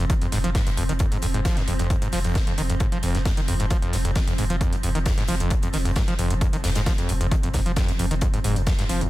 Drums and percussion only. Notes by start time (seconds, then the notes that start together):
0.10 kick, closed hi-hat
0.21 closed hi-hat
0.32 snare, closed hi-hat, open hi-hat
0.44 closed hi-hat
0.55 kick, snare, closed hi-hat
0.67 closed hi-hat
0.77 closed hi-hat, open hi-hat
0.89 closed hi-hat
0.99 kick, closed hi-hat
1.12 closed hi-hat
1.22 closed hi-hat, open hi-hat
1.34 closed hi-hat
1.45 kick, snare, closed hi-hat
1.57 snare, closed hi-hat
1.68 closed hi-hat, open hi-hat
1.79 closed hi-hat
1.90 kick, closed hi-hat
2.02 closed hi-hat
2.12 snare, open hi-hat
2.24 closed hi-hat
2.35 kick, snare, closed hi-hat
2.47 closed hi-hat
2.58 closed hi-hat, open hi-hat
2.70 closed hi-hat
2.80 kick, closed hi-hat
2.92 closed hi-hat
3.03 closed hi-hat, open hi-hat
3.15 snare, closed hi-hat
3.25 kick, snare, closed hi-hat
3.37 closed hi-hat
3.48 closed hi-hat, open hi-hat
3.60 closed hi-hat
3.70 kick, closed hi-hat
3.82 closed hi-hat
3.93 snare, closed hi-hat, open hi-hat
4.05 closed hi-hat
4.15 kick, snare, closed hi-hat
4.28 closed hi-hat
4.38 closed hi-hat, open hi-hat
4.50 closed hi-hat
4.61 kick, closed hi-hat
4.73 closed hi-hat
4.83 closed hi-hat, open hi-hat
4.95 closed hi-hat
5.06 kick, snare, closed hi-hat
5.17 snare, closed hi-hat
5.28 closed hi-hat, open hi-hat
5.40 closed hi-hat
5.50 kick, closed hi-hat
5.62 closed hi-hat
5.73 snare, open hi-hat
5.85 closed hi-hat
5.96 kick, snare, closed hi-hat
6.08 closed hi-hat
6.19 closed hi-hat, open hi-hat
6.30 closed hi-hat
6.41 kick, closed hi-hat
6.53 closed hi-hat
6.64 snare, closed hi-hat, open hi-hat
6.75 snare, closed hi-hat
6.86 kick, snare, closed hi-hat
6.98 closed hi-hat
7.09 closed hi-hat, open hi-hat
7.21 closed hi-hat
7.31 kick, closed hi-hat
7.43 closed hi-hat
7.54 kick, snare, closed hi-hat, open hi-hat
7.66 closed hi-hat
7.76 kick, snare, closed hi-hat
7.88 closed hi-hat
7.99 closed hi-hat, open hi-hat
8.11 closed hi-hat
8.21 kick, closed hi-hat
8.34 closed hi-hat
8.44 closed hi-hat, open hi-hat
8.56 closed hi-hat
8.67 kick, snare, closed hi-hat
8.79 snare, closed hi-hat
8.89 closed hi-hat, open hi-hat
9.01 closed hi-hat